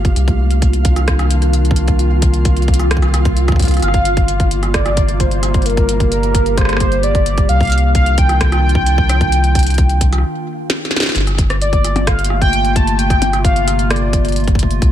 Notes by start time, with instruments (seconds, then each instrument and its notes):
Already playing: analog synth bass G1, ambient pad C3 A3 A#3 G4, synth texture F4 F5
0.05 kick, closed hi-hat
0.16 analog synth bass C2, ambient pad D#3 A#3 D4 F4, closed hi-hat
0.28 kick, closed hi-hat
0.51 closed hi-hat
0.62 kick, closed hi-hat
0.73 closed hi-hat
0.85 kick, closed hi-hat
0.96 cross-stick, closed hi-hat
1.08 kick, cross-stick, closed hi-hat
1.19 cross-stick, closed hi-hat
1.31 closed hi-hat
1.42 closed hi-hat
1.53 closed hi-hat
1.65 closed hi-hat
1.71 kick
1.76 closed hi-hat
1.88 kick, closed hi-hat
1.99 ambient pad C4, closed hi-hat
2.22 kick, closed hi-hat
2.34 closed hi-hat
2.45 kick, closed hi-hat
2.57 closed hi-hat
2.62 closed hi-hat
2.68 kick, closed hi-hat
2.74 closed hi-hat
2.80 cross-stick, closed hi-hat
2.91 cross-stick, closed hi-hat
2.97 kick
3.02 cross-stick, closed hi-hat
3.14 cross-stick, closed hi-hat
3.25 kick, closed hi-hat
3.37 closed hi-hat
3.48 kick, cross-stick, closed hi-hat
3.52 kick
3.56 kick, closed hi-hat
3.60 kick, closed hi-hat
3.64 kick, closed hi-hat
3.67 kick, cross-stick, closed hi-hat
3.71 closed hi-hat
3.74 cross-stick, closed hi-hat
3.77 closed hi-hat
3.80 ambient pad G3, cross-stick, closed hi-hat
3.82 analog synth bass G1, ambient pad C3 A#3, soft synth lead F5, closed hi-hat
3.88 cross-stick
3.94 kick, closed hi-hat
4.05 closed hi-hat
4.17 kick, closed hi-hat
4.28 closed hi-hat
4.40 kick, closed hi-hat
4.51 closed hi-hat
4.63 cross-stick, closed hi-hat
4.74 soft synth lead D5, kick, cross-stick, closed hi-hat
4.86 cross-stick, closed hi-hat
4.97 kick, closed hi-hat
5.09 closed hi-hat
5.20 soft synth lead C5, kick, closed hi-hat
5.31 closed hi-hat
5.43 cross-stick, closed hi-hat
5.54 kick, closed hi-hat
5.62 soft synth lead A#4, closed hi-hat
5.66 ambient pad G4, closed hi-hat
5.70 closed hi-hat
5.77 kick, closed hi-hat
5.89 closed hi-hat
6.00 kick, closed hi-hat
6.12 soft synth lead A#4, closed hi-hat
6.23 closed hi-hat
6.35 kick, closed hi-hat
6.46 closed hi-hat
6.58 soft synth lead C5, kick, cross-stick, closed hi-hat
6.61 cross-stick
6.65 cross-stick
6.69 cross-stick, closed hi-hat
6.73 cross-stick
6.77 soft synth lead C5, kick, cross-stick, closed hi-hat
6.92 closed hi-hat
7.03 soft synth lead D5, closed hi-hat
7.15 kick, closed hi-hat
7.26 closed hi-hat
7.38 kick, closed hi-hat
7.49 analog synth bass C2, ambient pad D#3 D4 F4, soft synth lead F5, closed hi-hat
7.60 kick, closed hi-hat
7.63 closed hi-hat
7.65 closed hi-hat
7.67 closed hi-hat
7.70 closed hi-hat
7.72 closed hi-hat
7.78 closed hi-hat
7.95 soft synth lead F5, kick, closed hi-hat
8.06 closed hi-hat
8.18 soft synth lead G5, kick, closed hi-hat
8.29 cross-stick, closed hi-hat
8.41 kick, cross-stick, closed hi-hat
8.52 cross-stick, closed hi-hat
8.69 closed hi-hat
8.75 kick
8.86 closed hi-hat
8.98 kick
9.09 cross-stick, closed hi-hat
9.21 kick, closed hi-hat
9.32 closed hi-hat
9.44 closed hi-hat
9.55 kick, closed hi-hat
9.59 closed hi-hat
9.63 closed hi-hat
9.67 closed hi-hat
9.70 closed hi-hat
9.74 closed hi-hat
9.78 kick, closed hi-hat
9.90 closed hi-hat
10.01 kick, closed hi-hat
10.13 cross-stick, closed hi-hat
10.18 cross-stick
10.70 snare
10.85 snare
10.91 snare
10.96 snare
11.00 snare
11.02 snare
11.06 snare
11.09 snare
11.12 snare
11.15 analog synth bass G1, ambient pad C3 A3 A#3 F4, snare, closed hi-hat
11.18 snare
11.21 snare
11.27 cross-stick, closed hi-hat
11.35 kick, cross-stick, closed hi-hat
11.42 cross-stick
11.50 cross-stick, closed hi-hat
11.61 soft synth lead D5, closed hi-hat
11.73 kick, closed hi-hat
11.85 cross-stick, closed hi-hat
11.96 closed hi-hat, percussion blips
12.07 soft synth lead F5, kick, cross-stick, closed hi-hat
12.19 closed hi-hat
12.25 closed hi-hat
12.30 cross-stick
12.41 soft synth lead G5, kick, closed hi-hat
12.53 closed hi-hat
12.65 closed hi-hat
12.76 soft synth lead A5, kick, closed hi-hat
12.87 closed hi-hat
12.99 soft synth lead G5, closed hi-hat
13.10 kick, cross-stick, closed hi-hat
13.22 closed hi-hat, percussion blips
13.33 cross-stick, closed hi-hat
13.44 soft synth lead F5, kick, closed hi-hat
13.56 closed hi-hat
13.68 cross-stick, closed hi-hat
13.79 closed hi-hat
13.90 soft synth lead D5, cross-stick, closed hi-hat
13.96 closed hi-hat
14.13 kick, closed hi-hat
14.25 closed hi-hat
14.29 closed hi-hat
14.32 closed hi-hat
14.36 closed hi-hat
14.40 closed hi-hat
14.44 kick, closed hi-hat
14.48 closed hi-hat
14.55 kick, closed hi-hat
14.63 kick
14.71 closed hi-hat
14.82 analog synth bass C2, ambient pad D#3 A#3 D4, kick, closed hi-hat